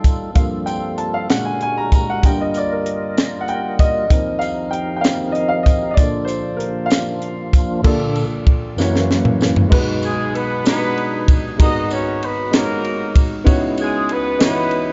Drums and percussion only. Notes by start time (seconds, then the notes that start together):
0.04 kick, closed hi-hat, tambourine
0.35 kick, closed hi-hat, tambourine
0.67 closed hi-hat, tambourine
0.98 closed hi-hat
1.30 snare, closed hi-hat, tambourine
1.61 closed hi-hat
1.92 kick, closed hi-hat, tambourine
2.23 kick, closed hi-hat, tambourine
2.54 closed hi-hat, tambourine
2.86 closed hi-hat
3.18 snare, closed hi-hat, tambourine
3.48 closed hi-hat
3.79 kick, closed hi-hat, tambourine
4.10 kick, closed hi-hat, tambourine
4.41 closed hi-hat, tambourine
4.73 closed hi-hat
5.04 snare, closed hi-hat, tambourine
5.35 closed hi-hat
5.66 kick, closed hi-hat, tambourine
5.97 kick, closed hi-hat, tambourine
6.28 closed hi-hat, tambourine
6.60 closed hi-hat
6.90 snare, closed hi-hat, tambourine
7.22 closed hi-hat
7.53 kick, closed hi-hat, tambourine
7.84 kick, crash, tambourine
8.15 ride, tambourine
8.47 kick, ride
8.78 snare, tambourine
8.96 snare
9.11 snare
9.25 mid tom
9.41 snare, tambourine
9.56 floor tom
9.72 kick, crash, tambourine
10.02 ride, tambourine
10.35 ride
10.65 snare, ride, tambourine
10.98 ride
11.28 kick, ride, tambourine
11.60 kick, ride, tambourine
11.90 ride, tambourine
12.23 ride
12.53 snare, ride, tambourine
12.85 ride
13.15 kick, ride, tambourine
13.47 kick, ride, tambourine
13.77 ride, tambourine
14.09 ride
14.40 snare, ride, tambourine
14.71 ride